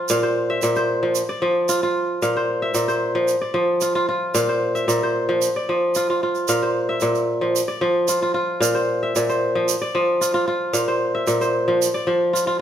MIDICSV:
0, 0, Header, 1, 3, 480
1, 0, Start_track
1, 0, Tempo, 532860
1, 81, Time_signature, 4, 2, 24, 8
1, 11360, End_track
2, 0, Start_track
2, 0, Title_t, "Kora"
2, 0, Program_c, 0, 46
2, 0, Note_on_c, 0, 53, 76
2, 0, Note_on_c, 0, 65, 63
2, 0, Note_on_c, 0, 74, 65
2, 88, Note_on_c, 0, 46, 84
2, 92, Note_on_c, 0, 77, 72
2, 126, Note_off_c, 0, 53, 0
2, 207, Note_on_c, 0, 72, 62
2, 245, Note_off_c, 0, 74, 0
2, 449, Note_on_c, 0, 76, 68
2, 503, Note_off_c, 0, 65, 0
2, 503, Note_off_c, 0, 77, 0
2, 557, Note_off_c, 0, 46, 0
2, 567, Note_on_c, 0, 46, 82
2, 684, Note_off_c, 0, 72, 0
2, 688, Note_on_c, 0, 72, 67
2, 925, Note_on_c, 0, 53, 67
2, 979, Note_off_c, 0, 76, 0
2, 1085, Note_off_c, 0, 46, 0
2, 1085, Note_off_c, 0, 53, 0
2, 1162, Note_on_c, 0, 74, 63
2, 1278, Note_on_c, 0, 53, 78
2, 1522, Note_on_c, 0, 65, 69
2, 1644, Note_off_c, 0, 65, 0
2, 1648, Note_on_c, 0, 65, 69
2, 1758, Note_off_c, 0, 72, 0
2, 2003, Note_on_c, 0, 46, 81
2, 2003, Note_on_c, 0, 77, 62
2, 2045, Note_off_c, 0, 53, 0
2, 2131, Note_on_c, 0, 72, 61
2, 2160, Note_off_c, 0, 74, 0
2, 2362, Note_on_c, 0, 76, 70
2, 2416, Note_off_c, 0, 65, 0
2, 2416, Note_off_c, 0, 77, 0
2, 2461, Note_off_c, 0, 46, 0
2, 2471, Note_on_c, 0, 46, 78
2, 2592, Note_off_c, 0, 72, 0
2, 2596, Note_on_c, 0, 72, 66
2, 2837, Note_on_c, 0, 53, 69
2, 2891, Note_off_c, 0, 76, 0
2, 3006, Note_off_c, 0, 46, 0
2, 3006, Note_off_c, 0, 53, 0
2, 3076, Note_on_c, 0, 74, 59
2, 3188, Note_on_c, 0, 53, 78
2, 3437, Note_on_c, 0, 65, 63
2, 3557, Note_off_c, 0, 65, 0
2, 3561, Note_on_c, 0, 65, 78
2, 3665, Note_off_c, 0, 72, 0
2, 3677, Note_off_c, 0, 65, 0
2, 3681, Note_on_c, 0, 65, 64
2, 3914, Note_on_c, 0, 46, 80
2, 3914, Note_on_c, 0, 77, 61
2, 3967, Note_off_c, 0, 53, 0
2, 4042, Note_on_c, 0, 72, 61
2, 4074, Note_off_c, 0, 74, 0
2, 4278, Note_on_c, 0, 76, 59
2, 4332, Note_off_c, 0, 65, 0
2, 4332, Note_off_c, 0, 77, 0
2, 4384, Note_off_c, 0, 46, 0
2, 4395, Note_on_c, 0, 46, 85
2, 4529, Note_off_c, 0, 72, 0
2, 4533, Note_on_c, 0, 72, 64
2, 4763, Note_on_c, 0, 53, 74
2, 4817, Note_off_c, 0, 76, 0
2, 4927, Note_off_c, 0, 53, 0
2, 4928, Note_off_c, 0, 46, 0
2, 5010, Note_on_c, 0, 74, 63
2, 5125, Note_on_c, 0, 53, 71
2, 5369, Note_on_c, 0, 65, 66
2, 5489, Note_off_c, 0, 65, 0
2, 5493, Note_on_c, 0, 65, 71
2, 5603, Note_off_c, 0, 72, 0
2, 5608, Note_off_c, 0, 65, 0
2, 5612, Note_on_c, 0, 65, 62
2, 5844, Note_on_c, 0, 46, 72
2, 5846, Note_on_c, 0, 77, 71
2, 5888, Note_off_c, 0, 53, 0
2, 5968, Note_on_c, 0, 72, 59
2, 6008, Note_off_c, 0, 74, 0
2, 6206, Note_on_c, 0, 76, 61
2, 6260, Note_off_c, 0, 65, 0
2, 6260, Note_off_c, 0, 77, 0
2, 6313, Note_off_c, 0, 46, 0
2, 6323, Note_on_c, 0, 46, 80
2, 6678, Note_on_c, 0, 53, 67
2, 6732, Note_off_c, 0, 76, 0
2, 6849, Note_off_c, 0, 46, 0
2, 6849, Note_off_c, 0, 53, 0
2, 6918, Note_on_c, 0, 74, 62
2, 7037, Note_on_c, 0, 53, 83
2, 7038, Note_off_c, 0, 72, 0
2, 7283, Note_on_c, 0, 65, 62
2, 7405, Note_off_c, 0, 65, 0
2, 7408, Note_on_c, 0, 65, 65
2, 7511, Note_off_c, 0, 65, 0
2, 7514, Note_on_c, 0, 65, 67
2, 7751, Note_on_c, 0, 46, 78
2, 7754, Note_on_c, 0, 77, 72
2, 7809, Note_off_c, 0, 53, 0
2, 7878, Note_on_c, 0, 72, 67
2, 7916, Note_off_c, 0, 74, 0
2, 8132, Note_on_c, 0, 76, 64
2, 8186, Note_off_c, 0, 65, 0
2, 8186, Note_off_c, 0, 77, 0
2, 8240, Note_off_c, 0, 46, 0
2, 8250, Note_on_c, 0, 46, 80
2, 8368, Note_off_c, 0, 72, 0
2, 8371, Note_on_c, 0, 72, 63
2, 8606, Note_on_c, 0, 53, 69
2, 8660, Note_off_c, 0, 76, 0
2, 8770, Note_off_c, 0, 46, 0
2, 8770, Note_off_c, 0, 53, 0
2, 8841, Note_on_c, 0, 74, 71
2, 8960, Note_on_c, 0, 53, 77
2, 9198, Note_on_c, 0, 65, 62
2, 9311, Note_off_c, 0, 65, 0
2, 9315, Note_on_c, 0, 65, 76
2, 9433, Note_off_c, 0, 65, 0
2, 9437, Note_on_c, 0, 65, 67
2, 9441, Note_off_c, 0, 72, 0
2, 9669, Note_on_c, 0, 46, 77
2, 9670, Note_on_c, 0, 77, 68
2, 9729, Note_off_c, 0, 53, 0
2, 9800, Note_on_c, 0, 72, 65
2, 9840, Note_off_c, 0, 74, 0
2, 10040, Note_on_c, 0, 76, 62
2, 10095, Note_off_c, 0, 65, 0
2, 10095, Note_off_c, 0, 77, 0
2, 10144, Note_off_c, 0, 46, 0
2, 10155, Note_on_c, 0, 46, 82
2, 10277, Note_off_c, 0, 72, 0
2, 10280, Note_on_c, 0, 72, 68
2, 10519, Note_on_c, 0, 53, 73
2, 10573, Note_off_c, 0, 76, 0
2, 10689, Note_off_c, 0, 46, 0
2, 10689, Note_off_c, 0, 53, 0
2, 10758, Note_on_c, 0, 74, 64
2, 10871, Note_on_c, 0, 53, 72
2, 11110, Note_on_c, 0, 65, 61
2, 11229, Note_off_c, 0, 65, 0
2, 11233, Note_on_c, 0, 65, 72
2, 11341, Note_off_c, 0, 65, 0
2, 11350, Note_off_c, 0, 72, 0
2, 11360, Note_off_c, 0, 53, 0
2, 11360, Note_off_c, 0, 74, 0
2, 11360, End_track
3, 0, Start_track
3, 0, Title_t, "Drums"
3, 77, Note_on_c, 9, 82, 65
3, 167, Note_off_c, 9, 82, 0
3, 557, Note_on_c, 9, 82, 60
3, 647, Note_off_c, 9, 82, 0
3, 680, Note_on_c, 9, 82, 17
3, 770, Note_off_c, 9, 82, 0
3, 1037, Note_on_c, 9, 82, 66
3, 1127, Note_off_c, 9, 82, 0
3, 1519, Note_on_c, 9, 82, 59
3, 1609, Note_off_c, 9, 82, 0
3, 2002, Note_on_c, 9, 82, 58
3, 2092, Note_off_c, 9, 82, 0
3, 2472, Note_on_c, 9, 82, 54
3, 2562, Note_off_c, 9, 82, 0
3, 2602, Note_on_c, 9, 82, 17
3, 2692, Note_off_c, 9, 82, 0
3, 2953, Note_on_c, 9, 82, 62
3, 3043, Note_off_c, 9, 82, 0
3, 3430, Note_on_c, 9, 82, 54
3, 3521, Note_off_c, 9, 82, 0
3, 3916, Note_on_c, 9, 82, 58
3, 4006, Note_off_c, 9, 82, 0
3, 4284, Note_on_c, 9, 82, 17
3, 4374, Note_off_c, 9, 82, 0
3, 4404, Note_on_c, 9, 82, 55
3, 4494, Note_off_c, 9, 82, 0
3, 4880, Note_on_c, 9, 82, 56
3, 4970, Note_off_c, 9, 82, 0
3, 5357, Note_on_c, 9, 82, 52
3, 5447, Note_off_c, 9, 82, 0
3, 5720, Note_on_c, 9, 82, 17
3, 5810, Note_off_c, 9, 82, 0
3, 5836, Note_on_c, 9, 82, 58
3, 5926, Note_off_c, 9, 82, 0
3, 6308, Note_on_c, 9, 82, 50
3, 6398, Note_off_c, 9, 82, 0
3, 6442, Note_on_c, 9, 82, 18
3, 6532, Note_off_c, 9, 82, 0
3, 6808, Note_on_c, 9, 82, 64
3, 6898, Note_off_c, 9, 82, 0
3, 7278, Note_on_c, 9, 82, 63
3, 7368, Note_off_c, 9, 82, 0
3, 7769, Note_on_c, 9, 82, 71
3, 7859, Note_off_c, 9, 82, 0
3, 8248, Note_on_c, 9, 82, 57
3, 8338, Note_off_c, 9, 82, 0
3, 8374, Note_on_c, 9, 82, 19
3, 8464, Note_off_c, 9, 82, 0
3, 8724, Note_on_c, 9, 82, 67
3, 8814, Note_off_c, 9, 82, 0
3, 9205, Note_on_c, 9, 82, 62
3, 9295, Note_off_c, 9, 82, 0
3, 9675, Note_on_c, 9, 82, 61
3, 9765, Note_off_c, 9, 82, 0
3, 10152, Note_on_c, 9, 82, 61
3, 10242, Note_off_c, 9, 82, 0
3, 10282, Note_on_c, 9, 82, 20
3, 10372, Note_off_c, 9, 82, 0
3, 10647, Note_on_c, 9, 82, 62
3, 10737, Note_off_c, 9, 82, 0
3, 11131, Note_on_c, 9, 82, 58
3, 11222, Note_off_c, 9, 82, 0
3, 11360, End_track
0, 0, End_of_file